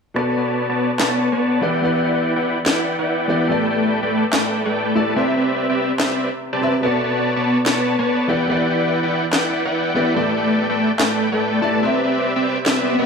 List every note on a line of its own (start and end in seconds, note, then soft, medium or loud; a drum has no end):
0.14 1.59 B2 medium
0.14 1.60 B3 medium
0.14 0.35 B3 medium
0.14 1.60 A4 medium
0.14 0.35 B4 medium
0.14 0.35 C#5 medium
0.14 0.35 D5 medium
0.14 1.61 D5 medium
0.14 0.35 A5 medium
0.37 0.67 B3 medium
0.37 0.67 B4 medium
0.37 0.67 C#5 medium
0.37 0.67 D5 medium
0.37 0.67 A5 medium
0.69 0.91 B3 medium
0.69 0.91 B4 medium
0.69 0.91 C#5 medium
0.69 0.91 D5 medium
0.69 0.91 A5 medium
0.99 1.29 B3 medium
0.99 1.29 B4 medium
0.99 1.29 C#5 medium
0.99 1.29 D5 medium
0.99 1.29 A5 loud
0.99 snare loud
0.99 clap medium
1.32 1.60 B3 medium
1.32 1.60 B4 medium
1.32 1.60 C#5 medium
1.32 1.60 D5 medium
1.32 1.60 A5 medium
1.61 1.80 E3 medium
1.61 1.81 B3 medium
1.61 1.81 E4 medium
1.61 1.81 G4 medium
1.61 1.81 B4 medium
1.61 1.81 D5 medium
1.61 1.81 F#5 medium
1.61 1.81 G5 loud
1.81 3.26 E3 medium
1.81 3.26 B3 medium
1.81 2.02 E4 medium
1.81 3.27 G4 medium
1.81 2.02 B4 medium
1.81 2.02 D5 medium
1.81 3.28 D5 medium
1.81 2.02 F#5 medium
1.81 2.02 G5 loud
2.04 2.33 E4 medium
2.04 2.33 B4 medium
2.04 2.33 D5 medium
2.04 2.33 F#5 medium
2.04 2.33 G5 medium
2.36 2.58 E4 medium
2.36 2.58 B4 medium
2.36 2.58 D5 medium
2.36 2.58 F#5 medium
2.36 2.58 G5 medium
2.66 2.96 E4 medium
2.66 2.96 B4 medium
2.66 2.96 D5 medium
2.66 2.96 F#5 medium
2.66 2.96 G5 loud
2.66 snare loud
2.66 clap medium
2.99 3.27 E4 medium
2.99 3.27 B4 medium
2.99 3.27 D5 medium
2.99 3.27 F#5 medium
2.99 3.27 G5 loud
3.28 3.47 E3 medium
3.28 3.47 B3 medium
3.28 3.47 E4 medium
3.28 3.48 G4 medium
3.28 3.47 B4 medium
3.28 3.47 D5 medium
3.28 3.48 D5 medium
3.28 3.47 F#5 medium
3.28 3.47 G5 medium
3.48 4.92 A3 medium
3.48 3.68 A3 medium
3.48 4.93 E4 medium
3.48 4.94 G4 medium
3.48 3.68 A4 medium
3.48 3.68 B4 medium
3.48 3.68 D5 medium
3.48 3.68 G5 medium
3.52 4.94 D5 medium
3.70 4.00 A3 medium
3.70 4.00 A4 medium
3.70 4.00 B4 medium
3.70 4.00 D5 medium
3.70 4.00 G5 medium
4.03 4.25 A3 medium
4.03 4.25 A4 medium
4.03 4.25 B4 medium
4.03 4.25 D5 medium
4.03 4.25 G5 medium
4.33 4.63 A3 medium
4.33 4.63 A4 medium
4.33 4.63 B4 medium
4.33 4.63 D5 medium
4.33 4.63 G5 loud
4.33 snare loud
4.33 clap medium
4.65 4.93 A3 medium
4.65 4.93 A4 medium
4.65 4.93 B4 medium
4.65 4.93 D5 medium
4.65 4.93 G5 medium
4.95 5.14 A3 medium
4.95 5.14 E4 medium
4.95 5.14 G4 medium
4.95 5.14 A4 medium
4.95 5.14 B4 medium
4.95 5.14 D5 medium
4.95 5.15 D5 medium
4.95 5.14 A5 medium
5.14 6.59 C3 medium
5.14 6.60 C4 medium
5.14 5.35 C4 medium
5.14 5.35 G4 medium
5.14 5.35 B4 medium
5.14 6.60 B4 medium
5.14 5.35 D5 medium
5.14 5.35 E5 medium
5.14 6.61 E5 medium
5.37 5.67 C4 medium
5.37 5.67 G4 medium
5.37 5.67 B4 medium
5.37 5.67 D5 medium
5.37 5.67 E5 medium
5.70 5.91 C4 medium
5.70 5.91 G4 medium
5.70 5.91 B4 medium
5.70 5.91 D5 medium
5.70 5.91 E5 medium
6.00 6.29 C4 medium
6.00 6.29 G4 medium
6.00 6.29 B4 medium
6.00 6.29 D5 medium
6.00 6.29 E5 loud
6.00 snare loud
6.00 clap medium
6.53 6.75 C4 medium
6.53 6.75 G4 medium
6.53 6.75 B4 medium
6.53 6.75 D5 medium
6.53 6.75 A5 medium
6.61 6.80 C3 medium
6.61 6.81 C4 medium
6.61 6.81 B4 medium
6.61 6.81 E5 medium
6.81 8.25 B2 medium
6.81 8.26 B3 medium
6.81 7.02 B3 medium
6.81 8.27 A4 medium
6.81 7.02 B4 medium
6.81 7.02 C#5 medium
6.81 7.02 D5 medium
6.81 8.27 D5 medium
6.81 7.02 A5 medium
7.04 7.33 B3 medium
7.04 7.33 B4 medium
7.04 7.33 C#5 medium
7.04 7.33 D5 medium
7.04 7.33 A5 medium
7.36 7.58 B3 medium
7.36 7.58 B4 medium
7.36 7.58 C#5 medium
7.36 7.58 D5 medium
7.36 7.58 A5 medium
7.66 7.96 B3 medium
7.66 7.96 B4 medium
7.66 7.96 C#5 medium
7.66 7.96 D5 medium
7.66 7.96 A5 loud
7.66 snare loud
7.66 clap medium
7.99 8.27 B3 medium
7.99 8.27 B4 medium
7.99 8.27 C#5 medium
7.99 8.27 D5 medium
7.99 8.27 A5 loud
8.28 8.46 E3 medium
8.28 8.47 B3 medium
8.28 8.47 E4 medium
8.28 8.48 G4 medium
8.28 8.47 B4 medium
8.28 8.47 D5 medium
8.28 8.48 D5 medium
8.28 8.47 F#5 medium
8.28 8.47 G5 medium
8.48 9.92 E3 medium
8.48 9.93 B3 medium
8.48 8.68 E4 medium
8.48 9.94 G4 medium
8.48 8.68 B4 medium
8.48 8.68 D5 medium
8.48 9.94 D5 medium
8.48 8.68 F#5 medium
8.48 8.68 G5 medium
8.70 9.00 E4 medium
8.70 9.00 B4 medium
8.70 9.00 D5 medium
8.70 9.00 F#5 medium
8.70 9.00 G5 medium
9.03 9.25 E4 medium
9.03 9.25 B4 medium
9.03 9.25 D5 medium
9.03 9.25 F#5 medium
9.03 9.25 G5 medium
9.33 9.63 E4 medium
9.33 9.63 B4 medium
9.33 9.63 D5 medium
9.33 9.63 F#5 medium
9.33 9.63 G5 loud
9.33 snare loud
9.33 clap medium
9.65 9.93 E4 medium
9.65 9.93 B4 medium
9.65 9.93 D5 medium
9.65 9.93 F#5 medium
9.65 9.93 G5 medium
9.94 10.14 E3 medium
9.94 10.14 B3 medium
9.94 10.14 E4 medium
9.94 10.14 G4 medium
9.94 10.14 B4 medium
9.94 10.14 D5 medium
9.94 10.15 D5 medium
9.94 10.14 F#5 medium
9.94 10.14 G5 loud
10.14 11.59 A3 medium
10.14 10.35 A3 medium
10.14 11.60 E4 medium
10.14 11.60 G4 medium
10.14 10.35 A4 medium
10.14 10.35 B4 medium
10.14 10.35 D5 medium
10.14 11.61 D5 medium
10.14 10.35 G5 loud
10.37 10.67 A3 medium
10.37 10.67 A4 medium
10.37 10.67 B4 medium
10.37 10.67 D5 medium
10.37 10.67 G5 medium
10.70 10.91 A3 medium
10.70 10.91 A4 medium
10.70 10.91 B4 medium
10.70 10.91 D5 medium
10.70 10.91 G5 medium
10.99 11.29 A3 medium
10.99 11.29 A4 medium
10.99 11.29 B4 medium
10.99 11.29 D5 medium
10.99 11.29 G5 loud
10.99 snare loud
10.99 clap medium
11.32 11.60 A3 medium
11.32 11.60 A4 medium
11.32 11.60 B4 medium
11.32 11.60 D5 medium
11.32 11.60 G5 loud
11.61 11.80 A3 medium
11.61 11.81 A3 medium
11.61 11.80 E4 medium
11.61 11.81 G4 medium
11.61 11.81 A4 medium
11.61 11.81 B4 medium
11.61 11.81 D5 medium
11.61 11.81 A5 medium
11.81 13.06 C3 medium
11.81 13.06 C4 medium
11.81 12.01 C4 medium
11.81 12.01 G4 medium
11.81 12.01 B4 medium
11.81 13.06 B4 medium
11.81 12.01 D5 medium
11.81 12.01 E5 medium
11.81 13.06 E5 medium
12.04 12.33 C4 medium
12.04 12.33 G4 medium
12.04 12.33 B4 medium
12.04 12.33 D5 medium
12.04 12.33 E5 medium
12.36 12.58 C4 medium
12.36 12.58 G4 medium
12.36 12.58 B4 medium
12.36 12.58 D5 medium
12.36 12.58 E5 medium
12.66 12.96 C4 loud
12.66 12.96 G4 medium
12.66 12.96 B4 medium
12.66 12.96 D5 medium
12.66 12.96 E5 loud
12.66 snare loud
12.66 clap medium
12.66 swell medium
12.98 13.06 C4 medium
12.98 13.06 G4 medium
12.98 13.06 B4 medium
12.98 13.06 D5 medium
12.98 13.06 E5 loud